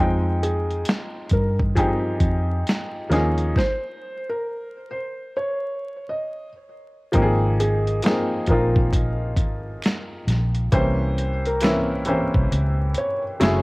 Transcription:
Already playing: F2 F3 G#3
0.00 C4 D#4 G5
0.43 G#4, closed hi-hat
0.71 closed hi-hat
0.85 snare, closed hi-hat
1.29 G2 A#4, kick, closed hi-hat
1.59 kick
1.75 F3 C4 D#4 G4 G#4, kick, closed hi-hat
2.20 F2, kick, closed hi-hat
2.67 snare, closed hi-hat
3.09 D#2 F3 A#3 C#4 D#4 G#4, closed hi-hat
3.14 snare
3.38 closed hi-hat
3.56 C5, kick, snare
4.29 A#4
4.91 C5
5.37 C#5
6.09 D#5
7.12 G#1 F3 A#3 C4 D#4, kick, closed hi-hat
7.16 G4
7.22 G#4
7.60 G#4, closed hi-hat
7.87 closed hi-hat
8.03 F3 A#3 C4 D#4, finger snap, snare, closed hi-hat
8.07 G#4
8.46 A#1 F3 A#3 C4, kick, closed hi-hat
8.51 D#4 F4 A#4
8.76 kick
8.93 kick, closed hi-hat
9.37 G#1, kick, closed hi-hat
9.82 finger snap, snare, closed hi-hat
10.27 A#1, snare, closed hi-hat
10.55 closed hi-hat
10.72 C2 E3 A#3 C4 C#4 G4 C5, kick, closed hi-hat
11.18 closed hi-hat
11.46 A#4, closed hi-hat
11.61 E3 A#3 C4 C#4, finger snap, snare, closed hi-hat
11.65 E4
12.05 E3 A#3 C4 C#4 C5, closed hi-hat
12.10 G4
12.34 C2, kick
12.52 C#2, closed hi-hat
12.94 C#5, closed hi-hat
13.40 F#1 F#3 A3 C#4 E4 G#4, finger snap, snare, closed hi-hat

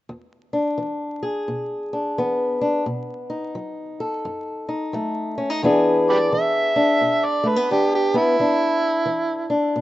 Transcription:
0.09 E2
0.53 D4
0.78 E3
1.23 G#4
1.48 B2
1.93 D4
2.18 E3 B3
2.61 D4
2.86 B2
3.30 D#4
3.55 F#3
4.00 A4
4.25 F#2
4.69 D#4
4.93 F#3 A3
5.38 C#4
5.50 D#4
5.63 E2 E3 B3 D4 G#4
6.10 G4 B4 D5
6.33 E3 E5
6.76 D4
7.01 B2
7.25 D5
7.43 A3
7.48 B4
7.56 B3
7.71 E3 D4 G4
7.95 G4
8.14 B3 E4
8.39 E2 D4
9.06 E3
9.50 D4
9.76 B2

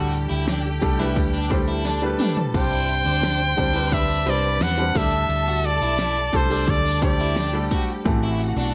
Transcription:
Already playing: D2 A2 G3 A3 D4 F#4 G4 A4 G5
0.13 open hi-hat, tambourine
0.30 D2 E4, tambourine
0.47 D4, snare, open hi-hat, tambourine
0.81 C2 G3 A3 D4 G4 A4, kick, open hi-hat, tambourine
0.99 G3 A3 D4 E4 G4 B4, snare
1.16 D2, kick, open hi-hat, tambourine
1.34 D4, tambourine
1.50 G3 A3 D4 G4 C5, kick, open hi-hat, tambourine
1.68 E4
1.85 D4 A4 A5, snare, open hi-hat, tambourine
2.02 G3 A3 D4 G4 B4
2.19 D4, mid tom, open hi-hat, tambourine
2.37 floor tom
2.53 C2 G2 G3 C4 D4 G4 C5 G5 C6, kick, crash, tambourine
2.71 E4
2.89 open hi-hat, tambourine
3.05 D2 D4
3.22 D4, snare, open hi-hat, tambourine
3.57 D2 G3 C4 D4 G4 C5, kick, open hi-hat, tambourine
3.74 G3 C4 D4 G4 B4
3.91 D4 B4 E5 B5, kick, open hi-hat, tambourine
4.09 tambourine
4.26 C2 G3 C4 D4 G4 C5 D5, open hi-hat, tambourine
4.44 tambourine
4.60 E2 C4 F#5, snare, open hi-hat, tambourine
4.78 G3 C4 D4 G4 C5
4.95 D2 A2 G3 A3 D4 G4 A4 E5 A5, kick, open hi-hat, tambourine
5.29 D2, open hi-hat, tambourine
5.48 F#4
5.64 D5, open hi-hat, tambourine
5.81 B1 E4, tambourine
5.99 E4, snare, open hi-hat, tambourine
6.33 C2 G3 A3 D4 G4 A4 C5, kick, open hi-hat, tambourine
6.50 G3 A3 D4 G4 A4
6.68 D2 D5, kick, open hi-hat, tambourine
6.86 D4
7.01 G3 A3 D4 G4 C5 D5 G5, kick, open hi-hat, tambourine
7.20 E4, tambourine
7.36 D4, snare, open hi-hat, tambourine
7.53 G3 A3 D4 G4 A4
7.71 F#4, kick, open hi-hat, tambourine
7.89 tambourine
8.04 A1 A2 E3 A3 C4 E4 F#4 G4 A4 F#5, kick, open hi-hat, tambourine
8.23 E4
8.40 open hi-hat, tambourine
8.56 B1 D4

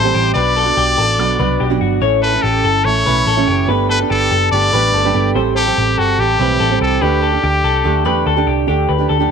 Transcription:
Already playing: A1 A4 C5
0.04 A2 E3 G3 C4 G4
0.14 A1 G4
0.34 B1 F#3 B3 D4 F#4 B4 D5
0.56 A4
0.65 B3 D4 F#4
0.77 B1 G4
0.98 A1 A4
1.18 B1 F#3 B3 D4 F#4
1.39 C2 B2 F#3 B3 D4 F#4 B4
1.60 B1 G4
1.70 B2 F#3 B3 D4 F#4
1.81 G1 F#4
2.01 A1 E3 A3 C#4 E4 A4 C#5
2.22 A4 B4
2.33 A3 C#4 E4
2.42 A1 G4 A4
2.64 G1 A4
2.85 A1 E3 A3 C#4 E4 C#5
3.06 B1 A2 E3 A3 C#4 E4 B4
3.27 A1 A4
3.37 A2 E3 A3 C#4 E4
3.48 F#1 G4
3.68 G1 A3 B3 D4 G4 A4 B4
3.90 A4 B4
3.99 D4 G4 B4
4.10 G1 G4 A4
4.31 F#1 A4
4.52 G1 A3 D4 G4 B4 D5
4.72 A1 G3 A3 D4 G4 B4
4.94 G1 A4
5.04 G3 A3 D4 G4 B4
5.14 G1 B3 G4 A4
5.35 A1 E3 G3 C4 G4 A4 C5
5.56 G4 A4
5.67 G3 C4 G4
5.77 A1 G4
5.98 G1 F#4 A4
6.18 A1 E3 G3 C4 G4
6.39 B1 A2 E3 G3 C4 G4 B4
6.60 A1 A4
6.71 A2 E3 G3 C4 G4
6.81 C2 G4 A4
7.01 D2 D3 A3 D4 G4 A4 B4
7.22 A4
7.32 A3 D4 G4
7.44 D2 G4
7.64 C2 A4
7.84 D2 D3 A3 D4 G4
8.05 E2 D3 A3 D4 G4 B4
8.26 D2 A4
8.36 D3 A3 D4 G4
8.47 C2 G4
8.67 D2 D3 A3 D4 G4 A4
8.89 D2 B4
8.98 A3 D4 G4
9.09 D2 A4
9.20 D3 A3 D4 G4

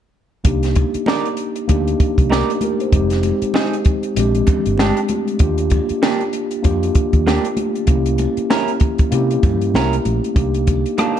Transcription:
0.44 C2 A#3 D4 D#4 G4, kick, closed hi-hat, muted conga
0.63 snare, closed hi-hat
0.75 kick, closed hi-hat, muted conga
0.94 muted fingered electric bass stroke, closed hi-hat
1.06 D#4 A#4 D5, snare, high conga
1.25 closed hi-hat
1.37 closed hi-hat
1.56 closed hi-hat
1.67 D2 A#3 D4 D#4 G4, kick, closed hi-hat, muted conga
1.88 closed hi-hat
2.00 kick, closed hi-hat
2.18 C2, kick, closed hi-hat
2.30 D#4 G4 A#4 D5, snare, high conga
2.50 closed hi-hat
2.61 G4 A#4, closed hi-hat, high conga
2.80 C5, closed hi-hat
2.92 F1 G#3 C4 D#4 G4, kick, closed hi-hat
3.10 snare, closed hi-hat
3.23 closed hi-hat, muted conga
3.42 muted fingered electric bass stroke, closed hi-hat
3.54 C4 D#4 G#4, snare, high conga
3.73 closed hi-hat
3.85 kick, closed hi-hat
4.03 closed hi-hat
4.16 A#1 G#3 C4 D4 G4, closed hi-hat, muted conga
4.35 closed hi-hat
4.47 kick, closed hi-hat, low conga
4.66 G1, closed hi-hat
4.78 G#3 D4 G4, snare, high conga
4.97 closed hi-hat
5.09 closed hi-hat, high conga
5.28 closed hi-hat
5.39 D#2 A#3 D4 F4 G4, kick, closed hi-hat
5.58 closed hi-hat
5.70 kick, closed hi-hat, muted conga
5.89 muted fingered electric bass stroke, closed hi-hat
6.02 A#3 D4 G4, snare, high conga
6.21 closed hi-hat
6.33 closed hi-hat
6.51 closed hi-hat
6.62 F2 A#3 D4 F4 G4, kick, closed hi-hat, muted conga
6.83 closed hi-hat
6.95 kick, closed hi-hat
7.13 D#2, kick, closed hi-hat
7.27 A#3 D4 G4, snare, high conga
7.45 closed hi-hat
7.57 closed hi-hat, high conga
7.75 closed hi-hat
7.87 C2 A#3 C#4 E4 G4, kick, closed hi-hat, muted conga
8.06 closed hi-hat
8.18 closed hi-hat, muted conga
8.37 muted fingered electric bass stroke, closed hi-hat
8.50 C#4 E4 A#4, snare, high conga
8.68 closed hi-hat
8.80 kick, closed hi-hat
8.98 kick, closed hi-hat
9.11 C3 A#3 C#4 E4 G4, closed hi-hat, muted conga
9.31 closed hi-hat
9.43 G2, kick, closed hi-hat, low conga
9.61 closed hi-hat
9.74 C2 C#4 E4 A#4, snare, high conga
9.93 closed hi-hat
10.05 A#1, closed hi-hat, high conga
10.24 closed hi-hat
10.34 C2 A#3 D4 D#4 G4, kick, closed hi-hat
10.54 closed hi-hat
10.67 kick, closed hi-hat, muted conga
10.86 closed hi-hat
10.98 D#3 A#3 D4, cross-stick, closed hi-hat, high conga

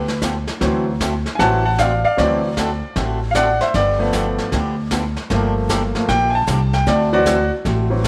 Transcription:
Already playing: D2 B4
0.08 snare
0.22 D3 F3 B3 D4 G4, kick, snare, hi-hat pedal
0.47 snare
0.61 D2 D3 E3 F#3 A3 C4 F#4 A4, brush sweep, kick, snare
1.00 D3 A3 C4 F#4 A4, kick, snare, hi-hat pedal
1.26 snare
1.35 A1 E3 F#5 G#5, brush sweep, snare
1.39 D3 F#3 A3 C4 F#4 A4 A5, kick
1.65 F#5 A5
1.78 D3 A3 C4 F#4 A4 D5 F5, kick, snare, hi-hat pedal
2.04 D5 F5
2.17 D2 D3 E3 F#3 A3 C4 F#4 A4 D5, brush sweep, kick, snare
2.57 D3 A3 C4 F#4 A4, kick, snare, hi-hat pedal
2.96 A1 D3 A3 C4 F#4 A4, brush sweep, kick, snare
3.31 F5, kick, snare, hi-hat pedal
3.35 D3 A3 C4 F#4 A4 D5 F#5
3.61 C5 E5, snare
3.74 G1 D3 F3 B3 D4 G4 D5, brush sweep, kick, snare
3.99 F3 A3 B3
4.13 D3 F3 B3 D4 G4, kick, snare, hi-hat pedal
4.38 snare
4.52 D2 D3 F3 B3 D4 G4, brush sweep, kick, snare
4.91 D3 F3 B3 D4 G4, kick, snare, hi-hat pedal
5.16 snare
5.30 G1 D3 F3 A3 A#3 D4 G4, brush sweep, kick, snare
5.69 D3 F3 A#3 D4 G4, kick, snare, hi-hat pedal
5.95 F3 A3 A#3, snare
6.08 A#1 D3 F3 A#3 D4 G4 G5, brush sweep, kick, snare
6.30 G#5
6.35 A5
6.47 C2 D3 F3 A#3 D4 G4, kick, snare, hi-hat pedal
6.73 G5, snare
6.86 D2 D3 A3 C4 F#4 A4 D5, brush sweep, kick, snare
7.13 E3 F#3 C4 F#4 D5
7.26 D3 A3 C4 F#4 A4, kick, snare, hi-hat pedal
7.65 A1 D3 A3 C4 F#4 A4, brush sweep, kick, snare
7.90 E3 F#3 C4
8.04 D3 A3, kick, snare, hi-hat pedal

